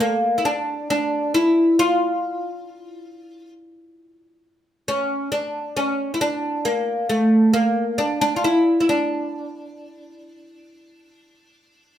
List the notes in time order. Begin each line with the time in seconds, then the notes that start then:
0.00 A#3
0.38 E4
0.45 D4
0.90 D4
1.34 E4
1.79 F4
4.88 C#4
5.32 D4
5.77 C#4
6.14 E4
6.21 D4
6.65 A#3
7.09 A3
7.53 A#3
7.98 D4
8.21 D4
8.36 F4
8.44 E4
8.80 E4
8.89 D4